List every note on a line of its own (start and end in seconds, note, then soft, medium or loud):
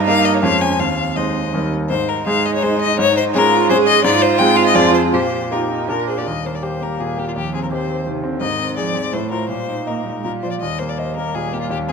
0.00 0.45 G2 medium
0.00 0.44 D#4 loud
0.06 0.39 A#3 medium
0.06 0.39 D#4 medium
0.06 0.40 A#4 medium
0.06 0.26 F5 loud
0.25 0.36 D#5 medium
0.34 0.42 C#5 medium
0.43 0.78 F2 medium
0.43 0.76 G#3 medium
0.43 0.81 C#4 medium
0.43 0.76 C#4 medium
0.43 0.76 C#5 medium
0.43 0.63 F5 loud
0.61 0.81 G#5 loud
0.79 1.15 D#2 medium
0.79 1.72 C4 medium
0.79 1.18 F5 medium
1.16 1.50 G#3 medium
1.16 1.50 D#4 soft
1.16 1.50 C5 medium
1.16 1.72 D#5 medium
1.54 1.89 D#2 medium
1.54 1.87 G3 soft
1.54 1.87 D#4 soft
1.54 1.87 A#4 soft
1.89 2.26 G#2 medium
1.89 3.36 D#4 medium
1.89 2.10 C5 loud
2.08 2.26 A#4 medium
2.26 2.59 G#3 medium
2.26 2.59 D#4 medium
2.26 2.59 G#4 medium
2.26 2.47 F5 medium
2.46 2.54 D#5 medium
2.54 2.64 C#5 medium
2.62 2.95 G#3 medium
2.62 2.95 D#4 medium
2.62 2.95 G#4 medium
2.62 2.81 C5 medium
2.81 2.99 D#5 loud
2.99 3.33 G#2 medium
2.99 3.16 C#5 loud
3.17 3.24 C5 loud
3.34 3.66 G#3 medium
3.34 3.67 C#4 medium
3.34 3.71 F4 loud
3.34 3.67 G#4 medium
3.34 3.69 A#4 loud
3.70 4.01 G#3 medium
3.70 4.01 C#4 medium
3.70 4.04 G#4 loud
3.70 4.02 G#4 medium
3.70 3.77 C5 loud
3.87 4.04 D#5 loud
4.04 4.38 G#2 loud
4.04 5.15 F4 loud
4.04 4.23 D5 loud
4.22 4.40 C5 loud
4.38 4.72 G#3 medium
4.38 4.72 C4 medium
4.38 4.72 G#4 medium
4.38 4.58 G5 loud
4.56 4.66 F5 loud
4.66 4.76 D#5 loud
4.75 5.12 F2 medium
4.75 5.09 G#3 medium
4.75 5.09 C4 medium
4.75 5.10 G#4 medium
4.75 4.93 D5 loud
4.94 5.01 C5 medium
5.13 5.50 A#2 medium
5.13 5.48 G4 medium
5.13 5.54 C5 medium
5.51 5.85 A#3 soft
5.51 5.85 D#4 soft
5.51 5.59 F4 medium
5.51 5.85 G4 soft
5.51 5.89 A#4 medium
5.70 5.91 D#4 medium
5.89 6.25 A#2 medium
5.89 6.22 A#3 soft
5.89 6.23 D4 soft
5.89 6.23 F4 soft
5.89 6.10 A#4 medium
5.89 6.07 A#4 medium
6.08 6.17 G#4 medium
6.08 6.19 C5 medium
6.17 6.21 G4 medium
6.17 6.28 D5 medium
6.26 7.32 D#2 soft
6.26 7.38 G3 soft
6.26 6.47 D#5 medium
6.45 6.74 A#3 soft
6.45 6.56 C5 medium
6.55 6.64 D5 soft
6.62 6.92 G4 soft
6.62 6.84 C5 medium
6.81 7.10 A#3 soft
6.81 7.02 A#4 medium
7.00 7.28 A#2 soft
7.00 7.20 G#4 medium
7.18 7.36 A#3 soft
7.18 7.27 G4 medium
7.28 7.31 F4 medium
7.36 8.38 D#2 soft
7.36 7.73 F3 medium
7.36 7.53 G4 medium
7.53 7.82 C4 soft
7.53 7.62 G#4 medium
7.63 7.66 A#4 medium
7.71 8.06 D#3 soft
7.71 7.99 G4 soft
7.71 8.06 C5 medium
7.88 8.16 C4 soft
8.06 8.26 C3 medium
8.06 8.34 D#3 soft
8.24 8.43 D3 medium
8.24 8.41 C4 soft
8.40 9.10 G#2 medium
8.40 8.78 D#3 medium
8.40 8.74 D#5 medium
8.59 8.87 C4 soft
8.77 8.96 F3 medium
8.77 9.05 G#4 soft
8.77 9.15 D5 medium
8.94 9.14 G3 medium
8.94 9.12 C4 soft
9.13 9.48 A2 medium
9.13 9.49 A3 medium
9.13 9.31 C5 medium
9.31 9.48 F4 soft
9.31 9.49 A#4 medium
9.31 9.48 C5 soft
9.49 10.22 A#2 soft
9.49 9.82 G3 soft
9.49 9.88 C5 medium
9.68 9.98 D#4 soft
9.87 10.04 A#3 medium
9.87 10.23 A#4 medium
9.87 10.17 D#5 soft
10.06 10.15 G3 soft
10.06 10.24 D#4 soft
10.15 10.25 G#3 soft
10.24 10.60 A#2 soft
10.24 10.44 G3 medium
10.24 10.32 A#4 medium
10.43 10.61 F3 soft
10.43 10.60 F4 soft
10.43 10.50 C5 medium
10.43 10.60 D5 soft
10.51 10.55 D5 medium
10.61 11.68 D#2 soft
10.61 11.93 G3 medium
10.61 10.80 D#5 medium
10.79 11.09 A#3 soft
10.79 10.90 C5 medium
10.89 11.00 D5 medium
10.98 11.15 C5 medium
10.98 11.28 D#5 soft
11.16 11.46 A#3 soft
11.16 11.36 A#4 medium
11.35 11.63 A#2 soft
11.35 11.55 G#4 medium
11.53 11.71 A#3 soft
11.53 11.60 G4 medium
11.61 11.70 F4 medium
11.70 11.93 D#2 medium
11.70 11.78 G4 medium
11.88 11.93 C4 soft
11.88 11.92 G#4 medium